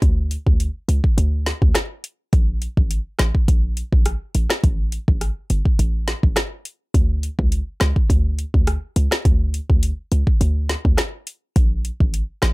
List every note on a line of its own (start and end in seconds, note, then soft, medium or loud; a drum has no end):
0.02 0.37 D2 loud
0.02 kick loud
0.02 closed hi-hat medium
0.31 closed hi-hat medium
0.46 0.69 D2 medium
0.46 kick loud
0.60 closed hi-hat medium
0.88 1.01 C#2 medium
0.88 closed hi-hat medium
1.04 kick loud
1.18 1.52 D2 loud
1.18 closed hi-hat medium
1.46 snare medium
1.46 closed hi-hat medium
1.62 1.72 D2 loud
1.62 kick medium
1.75 cross-stick loud
1.75 snare loud
1.75 closed hi-hat medium
2.04 closed hi-hat medium
2.33 2.68 A#1 loud
2.33 kick loud
2.33 closed hi-hat medium
2.62 closed hi-hat medium
2.77 3.00 A1 medium
2.77 kick loud
2.91 closed hi-hat medium
3.19 3.32 A1 medium
3.19 cross-stick loud
3.19 snare loud
3.19 closed hi-hat medium
3.35 kick loud
3.48 3.83 A#1 loud
3.48 kick medium
3.48 closed hi-hat medium
3.77 closed hi-hat medium
3.92 4.15 A#1 loud
3.92 kick medium
4.06 cross-stick loud
4.06 closed hi-hat medium
4.35 4.47 A1 medium
4.35 closed hi-hat medium
4.50 cross-stick medium
4.50 snare loud
4.64 4.98 A1 loud
4.64 kick loud
4.64 closed hi-hat medium
4.92 closed hi-hat medium
5.08 5.31 A1 medium
5.08 kick loud
5.21 cross-stick medium
5.21 closed hi-hat medium
5.50 5.62 G1 loud
5.50 closed hi-hat medium
5.65 kick loud
5.79 6.14 A1 loud
5.79 closed hi-hat medium
6.08 snare medium
6.08 closed hi-hat medium
6.23 6.34 A1 medium
6.23 kick medium
6.36 cross-stick loud
6.36 snare loud
6.36 closed hi-hat medium
6.65 closed hi-hat medium
6.94 7.29 D2 loud
6.94 kick loud
6.94 closed hi-hat medium
7.23 closed hi-hat medium
7.39 7.61 C#2 medium
7.39 kick loud
7.52 closed hi-hat medium
7.80 7.93 C#2 loud
7.80 cross-stick medium
7.80 snare loud
7.80 closed hi-hat medium
7.96 kick loud
8.10 8.45 D2 loud
8.10 kick medium
8.10 closed hi-hat medium
8.39 closed hi-hat medium
8.54 8.77 D2 medium
8.54 kick medium
8.67 cross-stick loud
8.67 closed hi-hat medium
8.96 9.08 C#2 loud
8.96 closed hi-hat medium
9.11 cross-stick medium
9.11 snare loud
9.25 9.60 D2 loud
9.25 kick loud
9.25 closed hi-hat medium
9.54 closed hi-hat medium
9.70 9.92 D2 medium
9.70 kick medium
9.83 closed hi-hat medium
10.12 10.24 C#2 medium
10.12 closed hi-hat medium
10.27 kick loud
10.41 10.75 D2 loud
10.41 closed hi-hat medium
10.69 snare medium
10.69 closed hi-hat medium
10.85 10.96 D2 medium
10.85 kick medium
10.97 cross-stick medium
10.97 cross-stick loud
10.97 snare loud
10.97 closed hi-hat medium
11.27 closed hi-hat medium
11.56 11.91 A#1 loud
11.56 kick loud
11.56 closed hi-hat medium
11.85 closed hi-hat medium
12.00 12.23 A1 medium
12.00 kick loud
12.14 closed hi-hat medium
12.42 12.53 A1 medium
12.42 cross-stick loud
12.42 snare loud
12.42 closed hi-hat medium